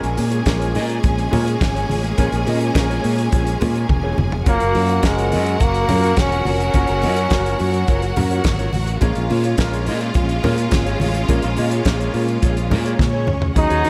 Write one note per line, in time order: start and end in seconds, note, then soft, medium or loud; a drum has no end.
0.00 0.15 A#1 medium
0.00 0.25 G#3 medium
0.00 4.43 G#3 medium
0.00 0.25 A#3 medium
0.00 4.43 A#3 medium
0.00 0.25 C#4 medium
0.00 4.43 C#4 medium
0.00 0.25 F4 medium
0.00 4.43 G#4 medium
0.00 0.26 A#4 medium
0.00 4.43 G#5 medium
0.00 muted clean electric guitar stroke soft
0.00 closed hi-hat soft
0.17 0.41 A#2 medium
0.17 0.29 F4 medium
0.17 0.30 G#4 medium
0.17 0.30 C#5 medium
0.17 open hi-hat medium
0.17 muted conga soft
0.31 0.44 F4 soft
0.31 0.44 G#4 medium
0.31 0.43 C#5 medium
0.31 closed hi-hat medium
0.45 0.77 A#1 loud
0.45 1.00 G#3 medium
0.45 1.00 A#3 medium
0.45 1.00 C#4 medium
0.45 1.01 F4 medium
0.45 1.01 A#4 medium
0.45 muted clean electric guitar stroke soft
0.45 kick medium
0.45 snare loud
0.45 closed hi-hat medium
0.45 high conga medium
0.60 0.73 F4 medium
0.60 0.74 G#4 medium
0.60 0.75 C#5 medium
0.60 closed hi-hat soft
0.74 0.98 A#2 loud
0.74 0.87 F4 medium
0.74 0.87 G#4 medium
0.74 0.87 D#5 medium
0.74 open hi-hat medium
0.89 muted clean electric guitar stroke soft
0.89 closed hi-hat medium
1.04 1.27 A#1 medium
1.04 muted clean electric guitar stroke soft
1.04 kick loud
1.04 closed hi-hat medium
1.04 muted conga soft
1.04 low conga medium
1.18 muted clean electric guitar stroke soft
1.18 closed hi-hat soft
1.31 1.55 A#2 loud
1.31 1.86 G#3 medium
1.31 1.85 A#3 medium
1.31 1.86 C#4 medium
1.31 1.47 F4 medium
1.31 1.86 F4 medium
1.31 1.47 G#4 medium
1.31 1.86 A#4 medium
1.31 1.45 C#5 medium
1.31 open hi-hat medium
1.31 muted conga medium
1.31 low conga medium
1.46 muted clean electric guitar stroke soft
1.46 closed hi-hat medium
1.61 1.84 G#1 loud
1.61 kick loud
1.61 snare loud
1.61 closed hi-hat medium
1.61 high conga medium
1.75 1.89 F4 medium
1.75 1.90 G#4 medium
1.75 1.90 C#5 medium
1.75 closed hi-hat soft
1.90 2.12 A1 medium
1.90 2.02 F4 medium
1.90 2.02 G#4 medium
1.90 2.03 C#5 medium
1.90 open hi-hat medium
1.90 high conga medium
2.04 muted clean electric guitar stroke soft
2.04 closed hi-hat medium
2.17 2.30 A#1 medium
2.17 2.54 G#3 medium
2.17 2.54 A#3 medium
2.17 2.54 C#4 medium
2.17 2.54 F4 medium
2.17 2.33 F4 medium
2.17 2.34 G#4 medium
2.17 2.54 A#4 medium
2.17 2.32 C#5 medium
2.17 kick medium
2.17 closed hi-hat medium
2.17 muted conga medium
2.32 2.44 A#1 medium
2.32 muted clean electric guitar stroke soft
2.32 closed hi-hat soft
2.47 2.70 A#2 medium
2.47 2.59 F4 medium
2.47 2.59 G#4 medium
2.47 2.60 D#5 medium
2.47 open hi-hat medium
2.47 muted conga soft
2.61 2.74 F4 soft
2.61 2.74 G#4 soft
2.61 2.73 C#5 medium
2.61 closed hi-hat soft
2.74 2.98 A#1 loud
2.74 3.28 G#3 medium
2.74 3.28 A#3 medium
2.74 3.29 C#4 medium
2.74 3.29 F4 medium
2.74 3.29 A#4 medium
2.74 muted clean electric guitar stroke soft
2.74 kick loud
2.74 snare loud
2.74 closed hi-hat medium
2.74 high conga medium
2.90 3.03 F4 medium
2.90 3.04 G#4 medium
2.90 3.05 C#5 medium
2.90 closed hi-hat soft
3.04 3.27 A#2 loud
3.04 3.16 F4 medium
3.04 3.17 G#4 medium
3.04 3.17 C#5 medium
3.04 open hi-hat medium
3.18 muted clean electric guitar stroke soft
3.18 closed hi-hat medium
3.32 3.55 A#1 medium
3.32 3.48 F4 medium
3.32 3.47 G#4 medium
3.32 3.46 C#5 medium
3.32 kick loud
3.32 closed hi-hat medium
3.32 muted conga soft
3.47 muted clean electric guitar stroke soft
3.47 closed hi-hat soft
3.60 3.84 A#2 medium
3.60 4.14 G#3 medium
3.60 4.14 A#3 medium
3.60 4.15 C#4 medium
3.60 4.15 F4 medium
3.60 4.15 A#4 medium
3.60 muted clean electric guitar stroke soft
3.60 open hi-hat medium
3.60 muted conga medium
3.60 low conga medium
3.75 3.88 F4 soft
3.75 3.88 G#4 soft
3.75 3.87 C#5 medium
3.75 closed hi-hat soft
3.89 4.12 E1 loud
3.89 muted clean electric guitar stroke soft
3.89 kick loud
3.89 high tom medium
3.89 high conga medium
4.04 4.17 F4 medium
4.04 4.18 G#4 medium
4.04 4.18 C#5 medium
4.18 4.41 F1 medium
4.18 muted clean electric guitar stroke soft
4.18 mid tom medium
4.18 high conga medium
4.32 muted clean electric guitar stroke soft
4.32 floor tom medium
4.46 4.58 F#1 loud
4.46 4.82 F#3 medium
4.46 8.98 F#3 medium
4.46 4.82 A#3 medium
4.46 5.07 A#3 medium
4.46 4.82 C#4 medium
4.46 4.61 F4 medium
4.46 8.98 F#4 medium
4.46 4.83 F#4 medium
4.46 8.99 F#4 medium
4.46 8.98 A#4 medium
4.46 4.83 A#4 medium
4.46 4.61 A#4 medium
4.46 4.60 C#5 medium
4.46 8.98 F#5 medium
4.46 kick loud
4.46 closed hi-hat medium
4.46 muted conga medium
4.60 4.73 F#1 medium
4.60 muted clean electric guitar stroke soft
4.60 closed hi-hat soft
4.75 4.98 F#2 medium
4.75 4.87 F4 medium
4.75 4.87 A#4 medium
4.75 4.88 C#5 medium
4.75 open hi-hat medium
4.75 muted conga medium
4.89 5.02 F4 soft
4.89 5.02 A#4 medium
4.89 5.01 C#5 medium
4.89 closed hi-hat soft
5.03 5.35 F#1 medium
5.03 5.57 F#3 medium
5.03 5.64 G#3 medium
5.03 5.57 A#3 medium
5.03 5.57 C#4 medium
5.03 5.57 F#4 medium
5.03 5.57 A#4 medium
5.03 muted clean electric guitar stroke soft
5.03 kick loud
5.03 snare loud
5.03 closed hi-hat medium
5.03 high conga medium
5.18 5.31 F4 medium
5.18 5.32 A#4 medium
5.18 5.33 C#5 medium
5.18 closed hi-hat soft
5.32 5.55 F#2 medium
5.32 5.44 F4 medium
5.32 5.44 A#4 medium
5.32 5.45 D#5 medium
5.32 open hi-hat medium
5.46 muted clean electric guitar stroke soft
5.46 closed hi-hat medium
5.60 5.83 F#1 medium
5.60 6.21 A#3 medium
5.60 muted clean electric guitar stroke soft
5.60 kick loud
5.60 closed hi-hat medium
5.60 low conga medium
5.74 muted clean electric guitar stroke soft
5.74 closed hi-hat soft
5.88 6.12 F#2 loud
5.88 6.42 F#3 medium
5.88 6.42 A#3 medium
5.88 6.42 C#4 medium
5.88 6.04 F4 medium
5.88 6.43 F#4 medium
5.88 5.96 G#4 medium
5.88 6.03 A#4 medium
5.88 6.02 C#5 medium
5.88 open hi-hat medium
5.88 muted conga medium
5.88 low conga medium
5.96 6.46 A#4 medium
6.03 muted clean electric guitar stroke soft
6.03 closed hi-hat soft
6.17 6.40 E1 medium
6.17 6.47 C#4 loud
6.17 muted clean electric guitar stroke soft
6.17 kick loud
6.17 snare loud
6.17 closed hi-hat medium
6.17 high conga medium
6.31 6.44 F4 medium
6.31 6.45 A#4 medium
6.31 6.46 C#5 medium
6.31 closed hi-hat soft
6.45 6.69 F1 medium
6.45 8.14 C#4 medium
6.45 6.57 F4 medium
6.45 6.58 A#4 medium
6.45 6.58 C#5 medium
6.45 open hi-hat medium
6.45 high conga medium
6.60 muted clean electric guitar stroke soft
6.60 closed hi-hat medium
6.74 6.86 F#1 medium
6.74 7.10 F#3 medium
6.74 7.10 A#3 medium
6.74 7.10 C#4 medium
6.74 6.89 F4 medium
6.74 7.10 F#4 medium
6.74 6.88 A#4 medium
6.74 7.11 A#4 medium
6.74 6.87 C#5 medium
6.74 kick loud
6.74 closed hi-hat medium
6.74 muted conga soft
6.87 7.05 F#1 medium
6.87 muted clean electric guitar stroke soft
6.87 closed hi-hat soft
7.01 7.26 F#2 medium
7.01 7.14 F4 medium
7.01 7.15 A#4 medium
7.01 7.15 D#5 medium
7.01 open hi-hat medium
7.01 muted conga medium
7.16 7.30 F4 soft
7.16 7.29 A#4 soft
7.16 7.29 C#5 medium
7.16 closed hi-hat soft
7.30 7.54 F#1 medium
7.30 7.84 F#3 medium
7.30 7.84 A#3 medium
7.30 7.85 C#4 medium
7.30 7.85 F#4 medium
7.30 7.85 A#4 medium
7.30 kick medium
7.30 snare loud
7.30 closed hi-hat medium
7.30 high conga medium
7.46 7.58 F4 medium
7.46 7.59 A#4 medium
7.46 7.60 C#5 medium
7.46 closed hi-hat soft
7.59 7.83 F#2 loud
7.59 7.71 F4 medium
7.59 7.72 A#4 medium
7.59 7.72 C#5 medium
7.59 open hi-hat medium
7.74 muted clean electric guitar stroke medium
7.74 closed hi-hat soft
7.88 8.11 F#1 medium
7.88 8.03 F4 medium
7.88 8.03 A#4 medium
7.88 8.02 C#5 medium
7.88 kick loud
7.88 closed hi-hat medium
7.88 muted conga soft
8.02 muted clean electric guitar stroke medium
8.02 closed hi-hat soft
8.16 8.39 F#2 loud
8.16 8.70 F#3 medium
8.16 8.70 A#3 medium
8.16 8.70 C#4 medium
8.16 8.70 F#4 medium
8.16 8.70 A#4 medium
8.16 muted clean electric guitar stroke soft
8.16 open hi-hat medium
8.16 muted conga medium
8.16 low conga medium
8.31 8.44 F4 medium
8.31 8.43 A#4 medium
8.31 8.43 C#5 medium
8.31 closed hi-hat soft
8.44 8.67 G#1 medium
8.44 kick loud
8.44 snare loud
8.44 closed hi-hat medium
8.44 high conga medium
8.59 8.72 F4 medium
8.59 8.73 A#4 medium
8.59 8.73 C#5 medium
8.59 closed hi-hat soft
8.73 8.96 A1 medium
8.73 muted clean electric guitar stroke soft
8.73 open hi-hat medium
8.73 high conga medium
8.87 muted clean electric guitar stroke soft
8.87 closed hi-hat medium
9.01 9.13 A#1 loud
9.01 9.37 G#3 medium
9.01 13.52 G#3 medium
9.01 9.37 A#3 medium
9.01 13.52 A#3 medium
9.01 9.37 C#4 medium
9.01 13.53 C#4 medium
9.01 9.16 F4 medium
9.01 12.95 F4 medium
9.01 9.38 F4 medium
9.01 9.16 G#4 medium
9.01 9.38 A#4 medium
9.01 9.14 C#5 medium
9.01 12.95 F5 medium
9.01 kick loud
9.01 closed hi-hat medium
9.01 muted conga medium
9.15 9.28 A#1 medium
9.15 muted clean electric guitar stroke soft
9.15 closed hi-hat soft
9.30 9.53 A#2 medium
9.30 9.42 F4 medium
9.30 9.42 G#4 medium
9.30 9.43 C#5 medium
9.30 open hi-hat medium
9.30 muted conga soft
9.44 9.57 F4 medium
9.44 9.57 G#4 soft
9.44 9.56 C#5 medium
9.44 closed hi-hat soft
9.58 9.89 A#1 medium
9.58 10.12 G#3 medium
9.58 10.12 A#3 medium
9.58 10.12 C#4 medium
9.58 10.12 F4 medium
9.58 10.13 A#4 loud
9.58 kick loud
9.58 snare medium
9.58 closed hi-hat medium
9.58 high conga medium
9.72 9.86 F4 medium
9.72 9.87 G#4 medium
9.72 9.88 C#5 medium
9.72 closed hi-hat soft
9.86 10.10 A#2 loud
9.86 9.99 F4 medium
9.86 9.99 G#4 medium
9.86 10.00 D#5 medium
9.86 open hi-hat medium
10.01 muted clean electric guitar stroke soft
10.01 closed hi-hat soft
10.14 10.38 A#1 medium
10.14 muted clean electric guitar stroke soft
10.14 kick loud
10.14 closed hi-hat medium
10.14 low conga medium
10.29 muted clean electric guitar stroke soft
10.29 closed hi-hat soft
10.43 10.66 A#2 loud
10.43 10.97 G#3 medium
10.43 10.97 A#3 medium
10.43 10.97 C#4 medium
10.43 10.58 F4 medium
10.43 10.98 F4 medium
10.43 10.58 G#4 medium
10.43 10.98 A#4 medium
10.43 10.56 C#5 medium
10.43 open hi-hat medium
10.43 muted conga medium
10.43 low conga loud
10.58 closed hi-hat soft
10.71 10.95 G#1 loud
10.71 muted clean electric guitar stroke soft
10.71 kick loud
10.71 snare loud
10.71 closed hi-hat medium
10.71 high conga medium
10.86 10.99 F4 medium
10.86 11.00 G#4 medium
10.86 11.00 C#5 medium
10.86 closed hi-hat soft
11.00 11.23 A1 medium
11.00 11.12 F4 medium
11.00 11.12 G#4 medium
11.00 11.13 C#5 medium
11.00 open hi-hat medium
11.00 high conga medium
11.14 muted clean electric guitar stroke soft
11.14 closed hi-hat medium
11.29 11.40 A#1 medium
11.29 11.64 G#3 medium
11.29 11.65 A#3 medium
11.29 11.65 C#4 medium
11.29 11.44 F4 medium
11.29 11.65 F4 medium
11.29 11.43 G#4 medium
11.29 11.65 A#4 medium
11.29 11.42 C#5 medium
11.29 kick loud
11.29 closed hi-hat medium
11.29 muted conga medium
11.42 11.55 A#1 medium
11.42 muted clean electric guitar stroke soft
11.42 closed hi-hat soft
11.57 11.80 A#2 medium
11.57 11.69 F4 medium
11.57 11.69 G#4 medium
11.57 11.70 D#5 medium
11.57 open hi-hat medium
11.57 muted conga medium
11.71 11.84 F4 soft
11.71 11.84 G#4 medium
11.71 11.83 C#5 medium
11.71 closed hi-hat soft
11.85 12.08 A#1 loud
11.85 12.39 G#3 medium
11.85 12.39 A#3 medium
11.85 12.39 C#4 medium
11.85 12.39 F4 medium
11.85 12.40 A#4 medium
11.85 kick medium
11.85 snare medium
11.85 closed hi-hat medium
11.85 high conga medium
12.00 12.13 F4 medium
12.00 12.14 G#4 medium
12.00 12.15 C#5 medium
12.00 closed hi-hat soft
12.14 12.37 A#2 medium
12.14 12.26 F4 medium
12.14 12.27 G#4 medium
12.14 12.27 C#5 medium
12.14 open hi-hat medium
12.28 muted clean electric guitar stroke soft
12.28 closed hi-hat medium
12.42 12.73 A#1 medium
12.42 12.57 F4 medium
12.42 12.57 G#4 medium
12.42 12.56 C#5 medium
12.42 kick loud
12.42 closed hi-hat medium
12.57 muted clean electric guitar stroke soft
12.57 closed hi-hat soft
12.70 12.93 A#2 medium
12.70 13.24 G#3 medium
12.70 13.24 A#3 medium
12.70 13.24 C#4 medium
12.70 13.24 F4 medium
12.70 13.25 A#4 medium
12.70 muted clean electric guitar stroke soft
12.70 open hi-hat medium
12.70 muted conga medium
12.70 low conga medium
12.85 12.98 F4 soft
12.85 12.97 G#4 medium
12.85 12.97 C#5 medium
12.85 closed hi-hat soft
12.98 13.28 A#2 loud
12.98 13.55 C#4 medium
12.98 13.55 C#5 medium
12.98 kick loud
12.98 snare medium
12.98 high conga medium
13.13 13.27 F4 medium
13.13 13.27 G#4 medium
13.13 13.28 C#5 medium
13.27 13.50 D2 medium
13.27 muted clean electric guitar stroke soft
13.27 mid tom medium
13.27 high conga medium
13.42 muted clean electric guitar stroke soft
13.42 floor tom medium
13.55 13.68 D#2 medium
13.55 13.90 D#3 medium
13.55 13.90 F#3 medium
13.55 13.90 C#4 medium
13.55 13.90 D#4 medium
13.55 13.90 D#4 loud
13.55 13.90 F#4 medium
13.55 13.90 G#4 medium
13.55 13.90 F#5 medium
13.55 muted clean electric guitar stroke soft
13.55 kick loud
13.55 closed hi-hat medium
13.55 muted conga soft
13.70 13.82 D#2 loud
13.70 13.82 F#4 medium
13.70 13.83 G#4 medium
13.70 13.84 C#5 medium
13.70 closed hi-hat soft
13.83 13.90 D#3 medium
13.83 13.90 F#4 medium
13.83 13.90 G#4 medium
13.83 13.90 C#5 medium
13.83 open hi-hat medium
13.83 muted conga medium